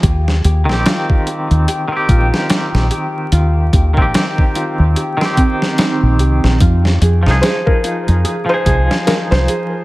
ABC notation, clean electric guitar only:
X:1
M:4/4
L:1/16
Q:"Swing 16ths" 1/4=73
K:Ebmix
V:1 name="Clean electric guitar"
z3 [E,CG]6 [E,CG]6- [E,CG]- | [E,CG]3 [E,CG]6 [E,CG]6- [E,CG] | z3 [F,EA]6 [F,EA]6- [F,EA] |]